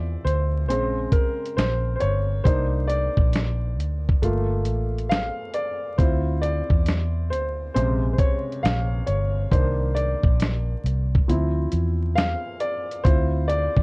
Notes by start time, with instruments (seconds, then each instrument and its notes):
Already playing: fingered electric bass E2, upright piano E3 F3 C4 C5 D5 E5
0.24 fingered electric bass D2, upright piano C5, closed hi-hat
0.68 fingered electric bass A#1, upright piano C#3 G#3 C4 C5, closed hi-hat
1.12 upright piano A#4, kick, closed hi-hat
1.46 closed hi-hat
1.57 fingered electric bass A#1, upright piano C5, snare, closed hi-hat
1.96 upright piano C5
2.00 fingered electric bass G1, upright piano C#5, closed hi-hat
2.44 fingered electric bass C2, upright piano A#3 D4 D#4 C5, kick, closed hi-hat
2.88 upright piano D5, closed hi-hat
3.17 fingered electric bass A#1, kick
3.33 snare, closed hi-hat
3.79 fingered electric bass D2, closed hi-hat
4.09 kick
4.22 fingered electric bass G1, upright piano A3 A#3 F4, closed hi-hat
4.65 fingered electric bass A1, closed hi-hat
4.98 closed hi-hat
5.09 upright piano F5, snare, closed hi-hat
5.54 upright piano D5, closed hi-hat
5.98 fingered electric bass D2, upright piano C4 E4 F4 C5, kick, closed hi-hat
6.41 upright piano D5, closed hi-hat
6.70 fingered electric bass E2, kick
6.86 snare, closed hi-hat
7.30 fingered electric bass D2, upright piano C5, closed hi-hat
7.74 fingered electric bass A#1, upright piano C3 C#3 G#3 C5, closed hi-hat
8.13 upright piano C5
8.18 upright piano C#5, kick, closed hi-hat
8.52 closed hi-hat
8.63 fingered electric bass A#1, upright piano F5, snare, closed hi-hat
9.06 fingered electric bass G1, upright piano C#5, closed hi-hat
9.51 fingered electric bass C2, upright piano D#3 A#3 D4 C5, kick, closed hi-hat
9.95 upright piano D5, closed hi-hat
10.23 fingered electric bass A#1, kick
10.40 snare, closed hi-hat
10.84 fingered electric bass C2, closed hi-hat
11.15 kick
11.28 fingered electric bass D2, upright piano F3 C4 E4, closed hi-hat
11.72 fingered electric bass E2, closed hi-hat
12.16 upright piano F5, snare, closed hi-hat
12.60 upright piano D5, closed hi-hat
12.91 closed hi-hat
13.03 fingered electric bass D2, upright piano C4 E4 F4 C5, kick, closed hi-hat
13.48 upright piano D5, closed hi-hat
13.76 fingered electric bass E2, kick